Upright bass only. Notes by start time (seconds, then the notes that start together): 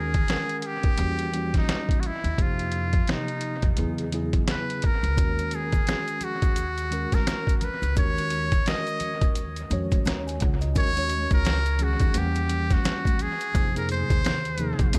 Already playing: D#2
0.84 D#2
0.99 E2
2.24 D#2
2.38 F2
3.63 F2
3.78 E2
5.03 C#2
5.18 D#2
6.42 D#2
7.82 C#2
7.97 D#2
9.22 D#2
9.71 F2
10.06 D#2
10.42 C#2
10.76 D#2
11.31 C#2
12.00 D#2
12.15 E2
13.55 F2
14.10 D#2
14.79 F2
14.95 E2